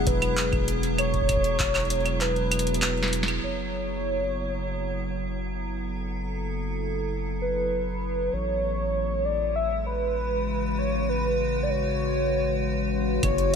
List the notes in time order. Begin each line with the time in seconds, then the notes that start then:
Already playing: E1 F#3 B3 E4 G#4
0.07 B4, kick, closed hi-hat
0.22 closed hi-hat, claves
0.37 clap, closed hi-hat
0.53 kick, closed hi-hat, claves
0.68 closed hi-hat
0.83 closed hi-hat
0.98 C#5, closed hi-hat, claves
1.14 kick, closed hi-hat
1.22 kick
1.29 kick, closed hi-hat, claves
1.37 kick
1.44 closed hi-hat
1.60 kick, clap, closed hi-hat
1.75 clap, closed hi-hat, claves
1.80 closed hi-hat
1.85 closed hi-hat
1.90 closed hi-hat
2.00 closed hi-hat
2.06 closed hi-hat, claves
2.21 B4, clap, closed hi-hat
2.36 closed hi-hat
2.52 closed hi-hat, claves
2.59 closed hi-hat
2.67 closed hi-hat
2.74 closed hi-hat
2.82 snare, clap, closed hi-hat, claves
2.97 closed hi-hat
3.03 snare, closed hi-hat
3.08 closed hi-hat
3.13 closed hi-hat
3.23 snare
3.28 closed hi-hat, claves
3.43 F#1 C#5
5.26 A4
7.42 B4
8.33 A1 G#3 C#5
8.95 C#3 B4
9.25 D5
9.34 F#4
9.56 E5
9.87 B4
10.78 C#5
11.09 B4
11.63 D5
11.70 C#5
13.23 F#1 F#3 C#5, kick, closed hi-hat, claves
13.38 closed hi-hat
13.45 B3